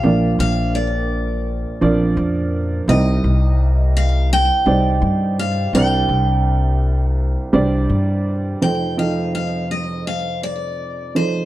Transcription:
Already playing: steel-string acoustic guitar F5
0.03 upright bass A#1, upright piano A#1 A#2 F3 D4 A#4 D5
0.39 upright bass A#1, steel-string acoustic guitar F5
0.75 steel-string acoustic guitar D5
1.81 upright bass A#1, upright piano F3 D4 A#4 D5
2.17 upright bass F2
2.88 upright bass C2, upright piano C2 C3 G3 D#4 C5 D#5, steel-string acoustic guitar D#5
3.24 upright bass C2
3.97 steel-string acoustic guitar F5
4.33 steel-string acoustic guitar G5
4.66 upright bass C2, upright piano G3 D#4 C5 D5
5.02 upright bass G2
5.39 steel-string acoustic guitar F5
5.73 upright bass C2, upright piano C2 C3 G3 D4 C5 D5, steel-string acoustic guitar G5
6.09 upright bass C2
7.12 steel-string acoustic guitar F5
7.53 upright bass C2, upright piano G3 D4 C5 D5
7.89 upright bass G2
8.61 upright piano F1 F2 F3 D#4 A4 C5, steel-string acoustic guitar G5
8.97 upright piano F3 D#4 A4 D#5, steel-string acoustic guitar F5
9.35 steel-string acoustic guitar F5
9.71 steel-string acoustic guitar D#5
10.07 steel-string acoustic guitar F5
10.43 steel-string acoustic guitar D5
11.15 upright piano F3 D#4 A4 C5, steel-string acoustic guitar C5

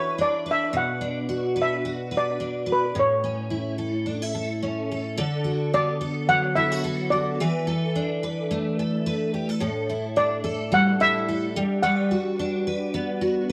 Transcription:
Already playing: steel-string acoustic guitar E3 D4 E4 B4, steel pan C#5
0.18 steel-string acoustic guitar D4, steel pan D5
0.46 steel-string acoustic guitar B4
0.51 steel pan E5
0.73 steel-string acoustic guitar B2, steel pan F#5
1.01 steel-string acoustic guitar D4
1.29 steel-string acoustic guitar F#4
1.56 steel-string acoustic guitar B4
1.62 steel pan E5
1.85 steel-string acoustic guitar F#4
2.11 steel-string acoustic guitar B4
2.17 steel pan D5
2.40 steel-string acoustic guitar D4
2.66 steel-string acoustic guitar B4
2.72 steel pan B4
2.95 steel-string acoustic guitar A2
2.99 steel pan C#5
3.24 steel-string acoustic guitar C#4
3.50 steel-string acoustic guitar E4
3.78 steel-string acoustic guitar A4
4.06 steel-string acoustic guitar D4
4.22 steel-string acoustic guitar E4
4.35 steel-string acoustic guitar A4
4.63 steel-string acoustic guitar C#4
4.91 steel-string acoustic guitar A4
5.18 steel-string acoustic guitar D3 A4
5.44 steel-string acoustic guitar F#4
5.74 steel-string acoustic guitar B3, steel pan D5
6.01 steel-string acoustic guitar A4
6.29 steel-string acoustic guitar F#3, steel pan F#5
6.55 steel-string acoustic guitar E4, steel pan E5
6.72 steel-string acoustic guitar F#4
6.84 steel-string acoustic guitar A4
7.10 steel-string acoustic guitar F#4, steel pan D5
7.40 steel-string acoustic guitar E3 B4
7.67 steel-string acoustic guitar A4
7.96 steel-string acoustic guitar D4
8.23 steel-string acoustic guitar B4
8.51 steel-string acoustic guitar A3
8.79 steel-string acoustic guitar A4
9.06 steel-string acoustic guitar B4
9.34 steel-string acoustic guitar G4
9.49 steel-string acoustic guitar A4
9.60 steel-string acoustic guitar A2 A4
9.89 steel-string acoustic guitar E4
10.16 steel-string acoustic guitar D4, steel pan D5
10.44 steel-string acoustic guitar A4
10.72 steel-string acoustic guitar G3, steel pan F#5
11.00 steel-string acoustic guitar E4, steel pan E5
11.29 steel-string acoustic guitar A4
11.56 steel-string acoustic guitar G3
11.83 steel-string acoustic guitar G3 B4, steel pan F#5
12.11 steel-string acoustic guitar F#4
12.39 steel-string acoustic guitar D4
12.67 steel-string acoustic guitar B4
12.94 steel-string acoustic guitar B3
13.21 steel-string acoustic guitar F#4

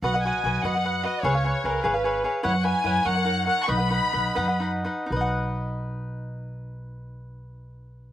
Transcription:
0.02 upright bass B1, cavaquinho F#4 B4 D#5 F#5, violin section F#5
0.14 cavaquinho B4 D#5 F#5
0.25 cavaquinho F#4 B4 D#5 F#5, violin section G#5
0.44 upright bass B1, cavaquinho F#4 B4 D#5 F#5
0.63 upright bass F#2, cavaquinho F#4 B4 D#5 F#5, violin section F#5
0.74 cavaquinho B4 D#5 F#5
0.84 cavaquinho F#4 B4 D#5 F#5
1.04 cavaquinho F#4 B4 D#5 F#5, violin section D#5
1.23 upright bass C#2, cavaquinho G#4 B4 C#5 F5, violin section C#5
1.35 cavaquinho B4 C#5 F5
1.44 cavaquinho G#4 B4 C#5 F5
1.64 upright bass C#2, cavaquinho G#4 B4 C#5 F5, violin section A#4
1.84 upright bass G#1, cavaquinho G#4 B4 C#5 F5, violin section B4
1.94 cavaquinho B4 C#5 F5
2.04 cavaquinho G#4 B4 C#5 F5
2.24 cavaquinho G#4 B4 C#5 F5
2.43 upright bass F#2, cavaquinho E4 B4 C#5 F#5, violin section F#5
2.54 cavaquinho C#5
2.64 cavaquinho E4 B4 C#5 F#5, violin section G#5
2.84 upright bass F#2, cavaquinho E4 B4 C#5 F#5
3.05 upright bass F#2, cavaquinho D#4 A#4 C#5 F#5, violin section F#5
3.15 cavaquinho A#4 C#5 F#5
3.24 cavaquinho D#4 A#4 C#5 F#5
3.46 cavaquinho D#4 A#4 C#5 F#5, violin section F#5
3.63 violin section C#6
3.68 upright bass B1, cavaquinho D#4 B4 D#5 F#5, violin section B5
3.77 cavaquinho B4 D#5 F#5
3.90 cavaquinho D#4 B4 D#5 F#5
4.13 upright bass B1, cavaquinho D#4 B4 D#5 F#5
4.35 upright bass F#2, cavaquinho D#4 B4 D#5 F#5
4.48 cavaquinho B4 D#5 F#5
4.60 cavaquinho D#4 B4 D#5 F#5
4.84 cavaquinho D#4 B4 D#5 F#5
5.06 cavaquinho D#4
5.10 upright bass B1, cavaquinho B4
5.16 cavaquinho D#5
5.21 cavaquinho F#5

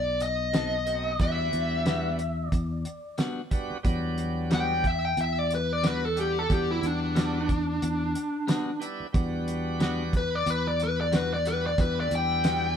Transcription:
Already playing: fingered electric bass B1, lead electric guitar D5
0.20 lead electric guitar D#5, closed hi-hat
0.53 clean electric guitar F#3 C4 D#4 A4, snare, closed hi-hat
0.86 tonewheel organ A3 C4 D#4 F#4, closed hi-hat
1.19 fingered electric bass E2, tonewheel organ G3 B3 D4 F#4, lead electric guitar E5, kick, closed hi-hat
1.53 fingered electric bass E2, closed hi-hat
1.86 clean electric guitar G3 B3 D4 F#4, snare, closed hi-hat
2.19 closed hi-hat
2.48 lead electric guitar D5, kick, closed hi-hat
2.52 fingered electric bass E2
2.85 closed hi-hat
3.18 clean electric guitar G3 B3 D4 F#4, snare, closed hi-hat
3.51 tonewheel organ G3 B3 D4 F#4, kick, closed hi-hat
3.70 muted fingered electric bass stroke
3.83 fingered electric bass E2, tonewheel organ F#3 G3 B3 D4, kick, closed hi-hat
4.18 closed hi-hat
4.50 clean electric guitar G3 B3 D4 F#4, lead electric guitar G5, snare, closed hi-hat
4.84 lead electric guitar E5, kick, closed hi-hat
5.05 lead electric guitar G5
5.17 fingered electric bass E2, lead electric guitar E5, closed hi-hat
5.39 lead electric guitar D5
5.51 lead electric guitar B4, closed hi-hat
5.73 lead electric guitar D5
5.83 clean electric guitar G3 B3 D4 F#4, lead electric guitar B4, snare, closed hi-hat
6.05 lead electric guitar A4
6.16 tonewheel organ G3 B3 D4 F#4, closed hi-hat
6.20 lead electric guitar G4
6.39 lead electric guitar A4
6.49 fingered electric bass E2, tonewheel organ G3 B3 D4 F#4, lead electric guitar G4, kick, closed hi-hat
6.71 lead electric guitar E4
6.83 fingered electric bass E2, lead electric guitar D4, closed hi-hat
7.15 clean electric guitar G3 B3 D4 F#4, snare, closed hi-hat
7.49 kick, closed hi-hat
7.82 fingered electric bass E2, closed hi-hat
8.15 closed hi-hat
8.47 clean electric guitar G3 B3 D4 F#4, snare, closed hi-hat
8.80 tonewheel organ G3 B3 D4 E4, closed hi-hat
9.00 muted fingered electric bass stroke
9.13 fingered electric bass E2, tonewheel organ G3 B3 D4 F#4, kick, closed hi-hat
9.48 closed hi-hat
9.80 clean electric guitar G3 B3 D4 F#4, snare, closed hi-hat
10.13 lead electric guitar B4, kick, closed hi-hat
10.35 lead electric guitar D5
10.46 fingered electric bass E2, lead electric guitar B4, closed hi-hat
10.67 lead electric guitar D5
10.80 lead electric guitar B4, closed hi-hat
11.01 lead electric guitar D5
11.12 clean electric guitar G3 B3 D4 F#4, snare, closed hi-hat
11.17 lead electric guitar B4
11.34 lead electric guitar D5
11.45 tonewheel organ G3 B3 D4 F#4, lead electric guitar B4, closed hi-hat
11.66 lead electric guitar D5
11.78 fingered electric bass E2, tonewheel organ G3 B3 D4 E4, lead electric guitar B4, kick, closed hi-hat
12.00 lead electric guitar D5
12.11 fingered electric bass E2, closed hi-hat
12.15 lead electric guitar G5
12.44 clean electric guitar G3 B3 D4 F#4, snare, closed hi-hat

